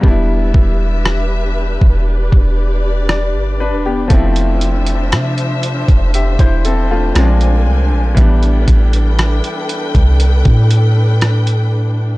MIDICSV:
0, 0, Header, 1, 5, 480
1, 0, Start_track
1, 0, Tempo, 1016949
1, 17, Time_signature, 4, 2, 24, 8
1, 5747, End_track
2, 0, Start_track
2, 0, Title_t, "String section"
2, 0, Program_c, 0, 48
2, 18, Note_on_c, 0, 67, 67
2, 18, Note_on_c, 0, 76, 80
2, 19, Note_on_c, 0, 62, 73
2, 19, Note_on_c, 0, 71, 67
2, 968, Note_off_c, 0, 76, 0
2, 977, Note_on_c, 0, 74, 77
2, 1918, Note_off_c, 0, 67, 0
2, 1919, Note_off_c, 0, 71, 0
2, 1927, Note_off_c, 0, 74, 0
2, 1937, Note_on_c, 0, 53, 72
2, 1937, Note_on_c, 0, 72, 71
2, 1938, Note_on_c, 0, 76, 84
2, 3362, Note_off_c, 0, 53, 0
2, 3363, Note_off_c, 0, 76, 0
2, 3378, Note_on_c, 0, 80, 73
2, 3379, Note_on_c, 0, 70, 63
2, 3838, Note_off_c, 0, 72, 0
2, 3853, Note_off_c, 0, 70, 0
2, 3853, Note_off_c, 0, 80, 0
2, 3857, Note_on_c, 0, 69, 70
2, 3857, Note_on_c, 0, 71, 71
2, 3857, Note_on_c, 0, 79, 85
2, 5747, Note_off_c, 0, 62, 0
2, 5747, Note_off_c, 0, 69, 0
2, 5747, Note_off_c, 0, 71, 0
2, 5747, Note_off_c, 0, 79, 0
2, 5747, End_track
3, 0, Start_track
3, 0, Title_t, "Grand piano"
3, 0, Program_c, 1, 0
3, 0, Control_c, 1, 64, 127
3, 5, Note_on_c, 1, 55, 70
3, 15, Note_on_c, 1, 59, 65
3, 22, Control_c, 1, 64, 0
3, 25, Note_on_c, 1, 62, 63
3, 35, Note_on_c, 1, 64, 82
3, 96, Control_c, 1, 64, 127
3, 1437, Note_off_c, 1, 59, 0
3, 1442, Note_off_c, 1, 62, 0
3, 1447, Note_off_c, 1, 64, 0
3, 1461, Note_on_c, 1, 74, 63
3, 1687, Note_off_c, 1, 74, 0
3, 1701, Note_on_c, 1, 71, 68
3, 1703, Note_on_c, 1, 62, 60
3, 1813, Note_off_c, 1, 71, 0
3, 1814, Note_off_c, 1, 62, 0
3, 1821, Note_on_c, 1, 67, 60
3, 1824, Note_on_c, 1, 59, 52
3, 1912, Note_off_c, 1, 55, 0
3, 1925, Note_on_c, 1, 53, 73
3, 1935, Note_on_c, 1, 57, 69
3, 1943, Control_c, 1, 64, 0
3, 1945, Note_on_c, 1, 60, 66
3, 1955, Note_on_c, 1, 64, 80
3, 2027, Control_c, 1, 64, 127
3, 2047, Note_off_c, 1, 67, 0
3, 2049, Note_off_c, 1, 59, 0
3, 2641, Note_off_c, 1, 57, 0
3, 2647, Note_off_c, 1, 60, 0
3, 2651, Note_off_c, 1, 64, 0
3, 2901, Note_on_c, 1, 76, 63
3, 2903, Note_on_c, 1, 67, 50
3, 3013, Note_off_c, 1, 76, 0
3, 3014, Note_off_c, 1, 67, 0
3, 3021, Note_on_c, 1, 72, 68
3, 3023, Note_on_c, 1, 64, 60
3, 3133, Note_off_c, 1, 72, 0
3, 3134, Note_off_c, 1, 64, 0
3, 3140, Note_on_c, 1, 69, 68
3, 3143, Note_on_c, 1, 60, 59
3, 3252, Note_off_c, 1, 69, 0
3, 3254, Note_off_c, 1, 60, 0
3, 3262, Note_on_c, 1, 65, 62
3, 3265, Note_on_c, 1, 57, 54
3, 3352, Note_off_c, 1, 53, 0
3, 3374, Note_on_c, 1, 53, 75
3, 3378, Note_on_c, 1, 56, 64
3, 3384, Control_c, 1, 64, 0
3, 3384, Note_on_c, 1, 60, 64
3, 3390, Note_on_c, 1, 61, 67
3, 3414, Note_off_c, 1, 61, 0
3, 3419, Note_on_c, 1, 62, 79
3, 3473, Control_c, 1, 64, 127
3, 3488, Note_off_c, 1, 65, 0
3, 3489, Note_off_c, 1, 57, 0
3, 3845, Note_on_c, 1, 52, 75
3, 3855, Note_off_c, 1, 53, 0
3, 3855, Note_on_c, 1, 55, 70
3, 3857, Note_off_c, 1, 56, 0
3, 3860, Note_off_c, 1, 60, 0
3, 3863, Control_c, 1, 64, 0
3, 3866, Note_on_c, 1, 59, 71
3, 3869, Note_off_c, 1, 62, 0
3, 3876, Note_on_c, 1, 62, 81
3, 3956, Control_c, 1, 64, 127
3, 5747, Note_off_c, 1, 52, 0
3, 5747, Note_off_c, 1, 55, 0
3, 5747, Note_off_c, 1, 59, 0
3, 5747, Note_off_c, 1, 62, 0
3, 5747, End_track
4, 0, Start_track
4, 0, Title_t, "808-style bass"
4, 0, Program_c, 2, 38
4, 16, Note_on_c, 2, 28, 104
4, 247, Note_off_c, 2, 28, 0
4, 256, Note_on_c, 2, 28, 104
4, 838, Note_off_c, 2, 28, 0
4, 857, Note_on_c, 2, 28, 93
4, 1087, Note_off_c, 2, 28, 0
4, 1097, Note_on_c, 2, 28, 100
4, 1576, Note_on_c, 2, 31, 95
4, 1583, Note_off_c, 2, 28, 0
4, 1758, Note_on_c, 2, 28, 89
4, 1765, Note_off_c, 2, 31, 0
4, 1928, Note_off_c, 2, 28, 0
4, 1937, Note_on_c, 2, 29, 102
4, 2417, Note_on_c, 2, 48, 95
4, 2424, Note_off_c, 2, 29, 0
4, 2759, Note_off_c, 2, 48, 0
4, 2778, Note_on_c, 2, 29, 89
4, 3008, Note_off_c, 2, 29, 0
4, 3017, Note_on_c, 2, 28, 93
4, 3363, Note_off_c, 2, 28, 0
4, 3378, Note_on_c, 2, 34, 96
4, 3616, Note_on_c, 2, 36, 93
4, 3623, Note_off_c, 2, 34, 0
4, 3736, Note_on_c, 2, 34, 92
4, 3743, Note_off_c, 2, 36, 0
4, 3851, Note_off_c, 2, 34, 0
4, 3857, Note_on_c, 2, 33, 104
4, 4087, Note_off_c, 2, 33, 0
4, 4096, Note_on_c, 2, 33, 96
4, 4442, Note_off_c, 2, 33, 0
4, 4696, Note_on_c, 2, 36, 92
4, 4927, Note_off_c, 2, 36, 0
4, 4935, Note_on_c, 2, 45, 93
4, 5747, Note_off_c, 2, 45, 0
4, 5747, End_track
5, 0, Start_track
5, 0, Title_t, "Drums"
5, 16, Note_on_c, 9, 36, 93
5, 64, Note_off_c, 9, 36, 0
5, 256, Note_on_c, 9, 36, 89
5, 304, Note_off_c, 9, 36, 0
5, 498, Note_on_c, 9, 37, 104
5, 545, Note_off_c, 9, 37, 0
5, 856, Note_on_c, 9, 36, 84
5, 904, Note_off_c, 9, 36, 0
5, 1097, Note_on_c, 9, 36, 88
5, 1144, Note_off_c, 9, 36, 0
5, 1459, Note_on_c, 9, 37, 107
5, 1506, Note_off_c, 9, 37, 0
5, 1936, Note_on_c, 9, 42, 60
5, 1937, Note_on_c, 9, 36, 101
5, 1983, Note_off_c, 9, 42, 0
5, 1984, Note_off_c, 9, 36, 0
5, 2058, Note_on_c, 9, 42, 50
5, 2105, Note_off_c, 9, 42, 0
5, 2177, Note_on_c, 9, 42, 73
5, 2224, Note_off_c, 9, 42, 0
5, 2296, Note_on_c, 9, 42, 54
5, 2344, Note_off_c, 9, 42, 0
5, 2418, Note_on_c, 9, 42, 60
5, 2420, Note_on_c, 9, 37, 110
5, 2465, Note_off_c, 9, 42, 0
5, 2467, Note_off_c, 9, 37, 0
5, 2538, Note_on_c, 9, 42, 43
5, 2585, Note_off_c, 9, 42, 0
5, 2658, Note_on_c, 9, 42, 64
5, 2705, Note_off_c, 9, 42, 0
5, 2777, Note_on_c, 9, 36, 87
5, 2777, Note_on_c, 9, 42, 43
5, 2824, Note_off_c, 9, 36, 0
5, 2825, Note_off_c, 9, 42, 0
5, 2898, Note_on_c, 9, 42, 70
5, 2945, Note_off_c, 9, 42, 0
5, 3017, Note_on_c, 9, 36, 87
5, 3017, Note_on_c, 9, 42, 43
5, 3064, Note_off_c, 9, 36, 0
5, 3064, Note_off_c, 9, 42, 0
5, 3138, Note_on_c, 9, 42, 66
5, 3185, Note_off_c, 9, 42, 0
5, 3377, Note_on_c, 9, 42, 64
5, 3380, Note_on_c, 9, 37, 106
5, 3424, Note_off_c, 9, 42, 0
5, 3427, Note_off_c, 9, 37, 0
5, 3497, Note_on_c, 9, 42, 46
5, 3544, Note_off_c, 9, 42, 0
5, 3856, Note_on_c, 9, 36, 100
5, 3856, Note_on_c, 9, 42, 65
5, 3904, Note_off_c, 9, 36, 0
5, 3904, Note_off_c, 9, 42, 0
5, 3977, Note_on_c, 9, 42, 47
5, 4024, Note_off_c, 9, 42, 0
5, 4096, Note_on_c, 9, 36, 90
5, 4096, Note_on_c, 9, 42, 74
5, 4143, Note_off_c, 9, 36, 0
5, 4143, Note_off_c, 9, 42, 0
5, 4216, Note_on_c, 9, 42, 55
5, 4263, Note_off_c, 9, 42, 0
5, 4336, Note_on_c, 9, 42, 61
5, 4338, Note_on_c, 9, 37, 115
5, 4383, Note_off_c, 9, 42, 0
5, 4385, Note_off_c, 9, 37, 0
5, 4455, Note_on_c, 9, 42, 44
5, 4502, Note_off_c, 9, 42, 0
5, 4575, Note_on_c, 9, 42, 63
5, 4622, Note_off_c, 9, 42, 0
5, 4695, Note_on_c, 9, 36, 89
5, 4695, Note_on_c, 9, 42, 44
5, 4742, Note_off_c, 9, 36, 0
5, 4742, Note_off_c, 9, 42, 0
5, 4814, Note_on_c, 9, 42, 68
5, 4861, Note_off_c, 9, 42, 0
5, 4933, Note_on_c, 9, 42, 41
5, 4935, Note_on_c, 9, 36, 88
5, 4980, Note_off_c, 9, 42, 0
5, 4982, Note_off_c, 9, 36, 0
5, 5053, Note_on_c, 9, 42, 65
5, 5100, Note_off_c, 9, 42, 0
5, 5293, Note_on_c, 9, 42, 61
5, 5296, Note_on_c, 9, 37, 108
5, 5340, Note_off_c, 9, 42, 0
5, 5344, Note_off_c, 9, 37, 0
5, 5414, Note_on_c, 9, 42, 46
5, 5461, Note_off_c, 9, 42, 0
5, 5747, End_track
0, 0, End_of_file